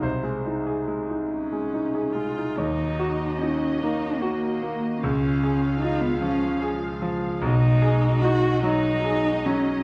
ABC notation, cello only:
X:1
M:6/8
L:1/16
Q:3/8=49
K:Ebm
V:1 name="Cello"
z6 D4 F2 | E4 D2 E2 B,4 | D4 E C D2 z4 | ^D4 ^F2 D4 _D2 |]